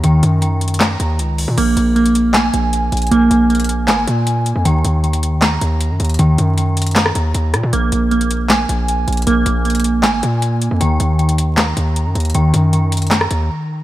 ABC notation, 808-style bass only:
X:1
M:4/4
L:1/16
Q:1/4=156
K:Ebdor
V:1 name="808-style bass" clef=bass
E,,2 G,,8 E,,2 D,,3 B,, | B,,,2 B,,,8 B,,,4 B,,,2 | B,,,2 B,,,6 A,,,2 B,,4- B,, F,, | E,,2 E,,8 E,,3 G,, E,,2 |
E,,2 G,,8 E,,2 E,,2 B,, B,, | B,,,2 B,,,8 B,,,4 B,,,2 | B,,,2 B,,,6 A,,,2 B,,4- B,, F,, | E,,2 E,,8 E,,3 G,, E,,2 |
E,,2 G,,8 E,,2 z4 |]